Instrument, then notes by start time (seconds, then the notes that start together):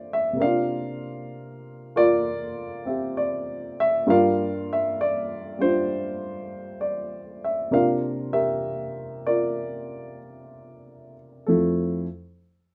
grand piano
Already playing: G2 D3 A#3 F4 C5 D5
0.13 E5
0.33 C3 A#3
0.40 D4 A#4 D5 F5
0.45 F4
1.96 F4 A#4 D5
2.85 C4 G4 E5
3.17 D5
3.80 E5
4.06 G2 G3 A#3 F4 A#4 D5 F5
4.73 E5
5.01 D5
5.59 G3 D4 F4 C5
6.81 D5
7.44 E5
7.71 C3 A#3 D4 F4 A#4 D5 F5
8.33 G4 A#4 E5
9.27 F4 A#4 D5
11.47 F2 F3 A3 E4 A4